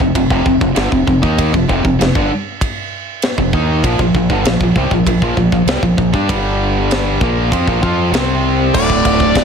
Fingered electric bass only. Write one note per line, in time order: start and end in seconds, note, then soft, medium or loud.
0.00 0.14 F1 medium
0.15 0.29 F1 medium
0.30 0.45 F1 medium
0.46 0.60 F1 medium
0.61 0.75 F1 medium
0.76 0.91 G1 medium
0.92 1.06 F1 medium
1.07 1.22 F1 medium
1.22 1.51 D#2 medium
1.53 1.68 F1 medium
1.69 1.84 F1 medium
1.85 1.99 F1 medium
2.00 2.14 F1 medium
2.15 2.29 G1 medium
3.38 3.52 F1 medium
3.53 3.82 D#2 medium
3.83 3.98 A#1 medium
3.99 4.13 A#1 medium
4.14 4.29 A#1 medium
4.30 4.43 G1 medium
4.44 4.59 A#1 medium
4.60 4.75 A#1 medium
4.76 4.90 C2 medium
4.91 5.05 A#1 medium
5.06 5.21 A#1 medium
5.22 5.36 A#1 medium
5.37 5.51 A#1 medium
5.52 5.65 A#1 medium
5.66 5.81 C2 medium
5.83 5.97 A#1 medium
5.98 6.13 A#1 medium
6.13 6.28 G2 medium
6.29 7.17 G1 medium
7.21 7.50 A#1 medium
7.52 7.67 F2 medium
7.67 7.82 A#1 medium
7.82 8.11 F2 medium
8.12 8.70 C2 medium
8.74 9.04 D1 medium
9.05 9.35 D1 medium
9.35 9.44 D1 medium